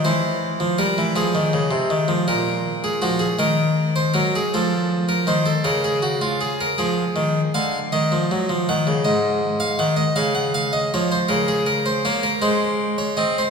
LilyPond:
<<
  \new Staff \with { instrumentName = "Harpsichord" } { \time 6/8 \key bes \minor \tempo 4. = 53 c''4 bes'8 aes'4. | bes'8. aes'16 ges'16 aes'16 bes'8. c''16 bes'16 aes'16 | a'8. bes'16 c''16 a'16 bes'16 aes'16 ges'16 f'16 aes'16 bes'16 | aes'4 f''8 ees''4 ges''8 |
ees''8. f''16 ges''16 ees''16 f''16 ges''16 f''16 ees''16 des''16 c''16 | bes'16 aes'16 bes'16 c''16 des''16 bes'16 c''8. des''16 ees''16 c''16 | }
  \new Staff \with { instrumentName = "Harpsichord" } { \clef bass \time 6/8 \key bes \minor e8. f16 g16 e16 f16 ees16 des16 c16 ees16 f16 | bes,4 f8 ees4 ges8 | f4 ees8 des4. | f8 ees8 d8 ees16 f16 ges16 f16 ees16 des16 |
aes,4 ees8 des4 f8 | des4 bes8 aes4 c'8 | }
>>